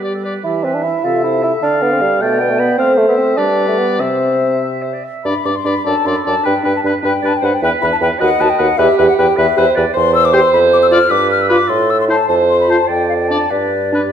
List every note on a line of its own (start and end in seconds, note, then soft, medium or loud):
0.00 0.38 G3 soft
0.00 0.13 G4 soft
0.00 0.14 G4 soft
0.04 0.13 D5 soft
0.14 0.25 A4 soft
0.24 0.44 B4 soft
0.24 0.34 D5 soft
0.44 0.94 E3 medium
0.44 0.65 E4 medium
0.44 0.66 G4 soft
0.44 1.65 E5 soft
0.64 0.76 C4 medium
0.64 0.84 B4 soft
0.74 0.85 D4 medium
0.83 1.06 E4 medium
0.83 1.03 E5 soft
1.04 1.53 C3 medium
1.04 1.23 F4 medium
1.04 1.26 A4 soft
1.04 1.59 A4 medium
1.24 1.43 E4 medium
1.24 1.44 C5 soft
1.43 1.52 E4 medium
1.43 1.61 E5 soft
1.62 2.11 D3 medium
1.62 1.83 D4 medium
1.62 1.84 A4 medium
1.62 2.23 F5 medium
1.62 2.21 F5 medium
1.82 1.93 B3 medium
1.82 2.03 D5 medium
1.92 2.03 C4 medium
2.01 2.23 G3 medium
2.01 2.21 F5 medium
2.20 2.68 B2 medium
2.20 2.42 A3 medium
2.20 2.41 D5 medium
2.20 2.80 D5 medium
2.20 2.79 G5 medium
2.39 2.51 B3 medium
2.39 2.61 G5 medium
2.50 2.61 A3 medium
2.59 2.77 B3 medium
2.59 2.77 B5 medium
2.77 3.34 A3 medium
2.77 2.99 C4 medium
2.77 3.39 C5 medium
2.77 3.38 C5 medium
2.77 2.92 F5 medium
2.98 3.08 A3 medium
3.08 3.17 B3 medium
3.08 3.39 E5 soft
3.17 3.39 C4 medium
3.37 4.02 G3 medium
3.37 3.68 D4 medium
3.37 3.98 B4 medium
3.37 4.02 B4 medium
3.37 4.01 D5 medium
3.68 3.80 A3 medium
3.78 4.02 B3 medium
3.98 5.05 C3 soft
3.98 4.63 C4 medium
3.98 4.56 C5 soft
3.98 4.94 C5 medium
3.98 5.04 E5 soft
4.61 4.84 E5 medium
4.82 4.95 C5 medium
4.93 5.05 D5 soft
5.04 5.25 E5 medium
5.24 5.34 G2 medium
5.24 5.34 D4 medium
5.24 5.35 D5 medium
5.24 5.47 B5 medium
5.45 5.54 G2 medium
5.45 5.54 D4 medium
5.45 5.54 D5 soft
5.45 5.57 D6 medium
5.55 5.68 C6 medium
5.64 5.75 G2 medium
5.64 5.73 D4 medium
5.64 5.75 D5 soft
5.64 5.86 B5 medium
5.85 5.95 F#2 medium
5.85 5.94 D4 soft
5.85 6.41 A4 medium
5.85 5.95 D5 medium
5.85 6.08 A5 medium
6.05 6.15 F#2 medium
6.05 6.14 D4 medium
6.05 6.16 D5 soft
6.05 6.18 C6 medium
6.16 6.25 B5 medium
6.24 6.35 F#2 medium
6.24 6.34 D4 medium
6.24 6.35 D5 medium
6.24 6.47 A5 medium
6.43 6.54 G2 medium
6.43 6.53 D4 medium
6.43 7.01 B4 medium
6.43 6.54 B4 medium
6.43 6.64 G5 medium
6.63 6.74 G2 medium
6.63 6.72 D4 medium
6.63 6.73 B4 soft
6.63 6.74 G5 medium
6.76 6.80 A5 medium
6.84 6.93 G2 medium
6.84 6.93 D4 medium
6.84 6.94 B4 medium
6.84 6.92 B5 medium
7.01 7.13 G2 medium
7.01 7.12 D4 medium
7.01 7.11 B4 medium
7.01 7.30 G5 medium
7.05 7.14 B4 medium
7.22 7.33 G2 medium
7.22 7.32 D4 medium
7.22 7.34 B4 medium
7.22 7.31 D5 medium
7.28 7.38 A5 medium
7.37 7.46 G5 medium
7.41 7.52 G2 medium
7.41 7.51 D4 medium
7.41 7.53 B4 medium
7.41 7.51 C5 medium
7.41 7.56 F#5 medium
7.54 7.63 G5 medium
7.62 7.71 E2 medium
7.62 7.71 E4 medium
7.62 8.20 B4 medium
7.62 7.73 B4 medium
7.62 7.70 G5 loud
7.81 7.91 E2 medium
7.81 7.90 E4 medium
7.81 7.93 B4 medium
7.81 7.86 B5 medium
7.92 7.97 A5 medium
8.01 8.10 E2 medium
8.01 8.10 E4 medium
8.01 8.11 B4 medium
8.01 8.08 G5 medium
8.19 8.30 D#2 medium
8.19 8.29 F#4 medium
8.19 8.30 B4 medium
8.19 8.78 D#5 medium
8.19 8.43 F#5 loud
8.40 8.49 D#2 medium
8.40 8.49 F#4 medium
8.40 8.49 B4 medium
8.40 8.51 A5 loud
8.50 8.61 G5 medium
8.58 8.68 D#2 medium
8.58 8.69 F#4 medium
8.58 8.67 B4 medium
8.58 8.79 F#5 loud
8.78 8.87 E2 medium
8.78 9.38 G4 medium
8.78 8.88 G4 medium
8.78 8.88 B4 medium
8.78 8.98 E5 loud
8.98 9.07 E2 medium
8.98 9.07 G4 medium
8.98 9.07 B4 medium
8.98 9.03 E5 medium
9.09 9.17 F#5 loud
9.17 9.27 E2 medium
9.17 9.26 G4 medium
9.17 9.27 B4 medium
9.17 9.37 G5 loud
9.37 9.46 E2 medium
9.37 9.46 G4 medium
9.37 9.56 B4 medium
9.37 9.47 B4 medium
9.37 9.69 E5 loud
9.57 9.66 E2 medium
9.57 9.65 G4 medium
9.57 9.66 B4 medium
9.57 9.77 C5 medium
9.75 9.85 E2 medium
9.75 9.85 G4 medium
9.75 9.85 B4 medium
9.75 9.93 D5 medium
9.94 10.44 E2 medium
9.94 11.08 C5 loud
9.94 10.14 C6 loud
10.15 10.27 E6 loud
10.25 10.35 D6 loud
10.33 10.40 G4 medium
10.33 10.40 C5 medium
10.33 10.53 C6 loud
10.53 11.01 F2 medium
10.53 10.59 B5 loud
10.73 10.77 D6 loud
10.83 10.87 E6 loud
10.91 10.98 F4 medium
10.91 10.98 D5 medium
10.91 11.13 F6 loud
11.09 11.59 G2 medium
11.09 11.69 B4 medium
11.09 11.30 D6 loud
11.31 11.43 F6 loud
11.41 11.50 E6 medium
11.50 11.57 F4 medium
11.50 11.56 B4 medium
11.50 11.71 D6 loud
11.68 12.19 A2 medium
11.68 12.07 A4 medium
11.68 11.92 C6 medium
11.90 12.00 E6 medium
12.01 12.05 C6 medium
12.08 12.15 E4 medium
12.08 12.16 C5 medium
12.08 12.28 A5 medium
12.28 12.79 F2 medium
12.28 12.89 C5 medium
12.28 12.35 A5 medium
12.49 12.59 C6 medium
12.61 12.71 B5 medium
12.68 12.76 F4 medium
12.68 12.77 C5 medium
12.68 12.89 A5 medium
12.87 13.40 F2 medium
12.87 13.51 D5 medium
12.87 13.09 G5 medium
13.09 13.14 F5 medium
13.19 13.30 G5 medium
13.28 13.37 D4 soft
13.28 13.38 D5 medium
13.28 13.52 A5 medium
13.50 14.04 G2 medium
13.50 13.92 B4 medium
13.50 14.12 D5 medium
13.92 14.00 D4 medium
13.92 14.12 G4 medium
13.92 14.01 B4 soft